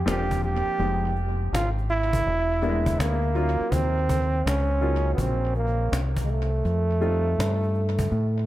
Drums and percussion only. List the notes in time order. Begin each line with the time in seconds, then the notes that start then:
0.08 cajon slap
0.31 cajon bass
0.43 cajon slap
0.79 cajon slap
1.16 cajon slap
1.55 cajon slap
1.78 cajon slap
1.89 cajon slap
2.13 cajon bass
2.26 cajon slap
2.63 cajon slap
2.86 cajon bass
3.00 cajon slap
3.35 cajon slap
3.72 cajon bass
4.09 cajon bass
4.47 cajon slap
4.81 cajon slap
5.18 cajon bass
5.55 cajon slap
5.93 cajon slap
6.17 cajon bass
6.28 cajon slap
6.65 cajon slap
7.02 cajon slap
7.40 cajon slap
7.64 cajon slap
7.75 cajon slap
7.99 cajon bass
8.11 cajon slap